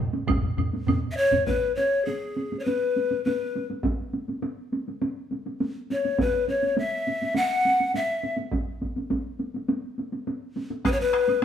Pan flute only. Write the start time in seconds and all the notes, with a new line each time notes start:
1.11 E5
1.17 C#5
1.46 B4
1.75 C#5
2.05 G#4
2.60 C#5
2.64 B4
3.25 B4
5.92 C#5
6.21 B4
6.48 C#5
6.78 E5
7.36 F#5
7.95 E5
10.86 B4
10.92 C#5
11.00 B4